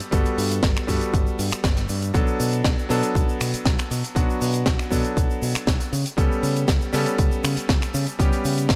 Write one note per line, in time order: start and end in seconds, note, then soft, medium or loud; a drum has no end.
0.00 0.10 A4 loud
0.00 closed hi-hat medium
0.00 shaker medium
0.11 0.24 G1 loud
0.11 0.85 G3 medium
0.11 0.85 B3 medium
0.11 0.85 F#4 medium
0.11 0.86 A4 medium
0.11 kick loud
0.11 closed hi-hat medium
0.11 shaker medium
0.25 closed hi-hat medium
0.25 shaker soft
0.38 0.59 G2 medium
0.38 open hi-hat loud
0.38 shaker medium
0.51 closed hi-hat medium
0.51 shaker medium
0.63 0.74 G1 medium
0.63 kick loud
0.63 snare loud
0.63 closed hi-hat medium
0.63 shaker medium
0.77 finger snap medium
0.77 shaker soft
0.87 0.99 G2 loud
0.87 2.11 G3 medium
0.87 2.11 B3 medium
0.87 2.12 F#4 medium
0.87 2.12 A4 medium
0.87 kick medium
0.87 open hi-hat medium
0.87 shaker medium
1.01 closed hi-hat medium
1.01 shaker soft
1.14 1.25 G1 loud
1.14 kick loud
1.14 closed hi-hat medium
1.14 shaker medium
1.27 shaker soft
1.39 1.50 G2 loud
1.39 open hi-hat loud
1.39 shaker medium
1.51 finger snap medium
1.51 muted fingered electric bass stroke soft
1.51 closed hi-hat medium
1.51 shaker medium
1.64 1.85 G1 medium
1.64 kick loud
1.64 snare loud
1.64 closed hi-hat medium
1.64 shaker medium
1.77 snare soft
1.77 closed hi-hat medium
1.77 shaker soft
1.89 2.11 G2 loud
1.89 open hi-hat loud
1.89 shaker medium
2.02 closed hi-hat medium
2.02 shaker medium
2.14 2.25 B1 medium
2.14 2.87 F#3 medium
2.14 2.87 B3 medium
2.14 2.87 D4 medium
2.14 2.88 A4 medium
2.14 kick loud
2.14 closed hi-hat medium
2.14 shaker medium
2.27 shaker soft
2.40 2.61 B2 medium
2.40 open hi-hat loud
2.40 shaker medium
2.53 closed hi-hat medium
2.53 shaker soft
2.64 2.76 B1 medium
2.64 kick loud
2.64 snare loud
2.64 closed hi-hat medium
2.64 shaker medium
2.79 shaker soft
2.89 3.01 B2 medium
2.89 4.13 F#3 medium
2.89 4.13 B3 medium
2.89 4.13 D4 medium
2.89 4.14 A4 medium
2.89 snare soft
2.89 open hi-hat medium
2.89 shaker medium
3.03 closed hi-hat medium
3.03 shaker soft
3.15 3.26 B1 loud
3.15 kick loud
3.15 closed hi-hat medium
3.15 shaker medium
3.29 shaker soft
3.41 3.52 B2 medium
3.41 finger snap medium
3.41 open hi-hat medium
3.41 shaker medium
3.54 muted fingered electric bass stroke soft
3.54 closed hi-hat medium
3.54 shaker medium
3.65 3.77 B1 loud
3.65 kick loud
3.65 snare loud
3.65 closed hi-hat medium
3.65 shaker medium
3.79 finger snap medium
3.79 closed hi-hat medium
3.79 shaker soft
3.91 4.02 B2 loud
3.91 open hi-hat medium
3.91 shaker medium
4.04 closed hi-hat medium
4.04 shaker soft
4.15 4.27 B1 loud
4.15 4.88 F#3 medium
4.15 4.89 B3 medium
4.15 4.89 D4 medium
4.15 4.89 F#4 medium
4.15 kick loud
4.15 closed hi-hat medium
4.15 shaker medium
4.30 shaker soft
4.41 4.63 B2 medium
4.41 open hi-hat loud
4.41 shaker medium
4.54 closed hi-hat medium
4.54 shaker soft
4.66 4.77 B1 medium
4.66 kick loud
4.66 snare loud
4.66 closed hi-hat medium
4.66 shaker medium
4.79 finger snap medium
4.79 shaker soft
4.90 5.03 B2 loud
4.90 5.90 F#3 medium
4.90 5.91 B3 medium
4.90 5.91 D4 medium
4.90 5.92 A4 medium
4.90 kick medium
4.90 open hi-hat medium
4.90 shaker medium
5.04 closed hi-hat medium
5.04 shaker medium
5.17 5.28 B1 loud
5.17 kick loud
5.17 closed hi-hat medium
5.17 shaker medium
5.30 shaker soft
5.42 5.53 B2 medium
5.42 open hi-hat loud
5.42 shaker medium
5.55 finger snap medium
5.55 muted fingered electric bass stroke soft
5.55 closed hi-hat medium
5.55 shaker medium
5.67 5.78 B1 loud
5.67 kick loud
5.67 snare loud
5.67 closed hi-hat medium
5.67 shaker medium
5.80 closed hi-hat medium
5.80 shaker soft
5.93 6.04 C#3 loud
5.93 open hi-hat medium
5.93 shaker medium
6.06 closed hi-hat medium
6.06 shaker medium
6.17 6.29 C#2 loud
6.17 6.90 G3 medium
6.17 6.90 B3 medium
6.17 6.91 C#4 medium
6.17 6.91 A4 medium
6.17 kick loud
6.17 closed hi-hat medium
6.17 shaker medium
6.32 shaker soft
6.43 6.64 C#3 medium
6.43 open hi-hat loud
6.43 shaker medium
6.56 closed hi-hat medium
6.56 shaker medium
6.68 6.79 C#2 medium
6.68 kick loud
6.68 snare loud
6.68 closed hi-hat loud
6.68 shaker medium
6.81 shaker soft
6.93 7.04 C#3 loud
6.93 8.16 G3 medium
6.93 8.16 B3 medium
6.93 8.17 C#4 medium
6.93 8.17 A4 medium
6.93 snare soft
6.93 open hi-hat loud
6.93 shaker medium
7.06 closed hi-hat medium
7.06 shaker medium
7.18 7.30 C#2 loud
7.18 kick loud
7.18 closed hi-hat medium
7.18 shaker medium
7.31 shaker soft
7.44 7.55 C#3 medium
7.44 finger snap medium
7.44 open hi-hat loud
7.44 shaker loud
7.57 muted fingered electric bass stroke soft
7.57 closed hi-hat medium
7.57 shaker soft
7.69 7.80 C#2 loud
7.69 kick loud
7.69 snare loud
7.69 closed hi-hat medium
7.69 shaker medium
7.82 finger snap medium
7.82 closed hi-hat medium
7.82 shaker soft
7.94 8.05 C#3 loud
7.94 open hi-hat medium
7.94 shaker loud
8.07 closed hi-hat medium
8.07 shaker medium
8.19 8.30 C#2 loud
8.19 8.76 G3 medium
8.19 8.76 B3 medium
8.19 8.76 C#4 medium
8.19 8.76 G4 medium
8.19 kick loud
8.19 closed hi-hat medium
8.19 shaker medium
8.32 closed hi-hat medium
8.32 shaker soft
8.45 8.66 C#3 medium
8.45 open hi-hat loud
8.45 shaker medium
8.58 closed hi-hat medium
8.58 shaker medium
8.69 8.76 C#2 medium
8.69 kick loud
8.69 snare loud
8.69 closed hi-hat medium
8.69 shaker medium